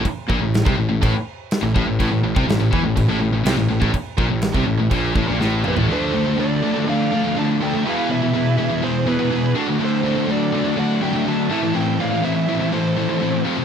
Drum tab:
CC |x---x---x---x---|x---x---x---x---|x---x---x-------|----------------|
SD |----o-------o---|----o-------o---|----o-------o---|----------------|
T2 |----------------|----------------|--------------o-|----------------|
FT |----------------|----------------|---------------o|----------------|
BD |o-o--o--o-----o-|o--o--o-o------o|o-o--o--o-o-----|----------------|

CC |----------------|----------------|----------------|
SD |----------------|----------------|----------------|
T2 |----------------|----------------|----------------|
FT |----------------|----------------|----------------|
BD |----------------|----------------|----------------|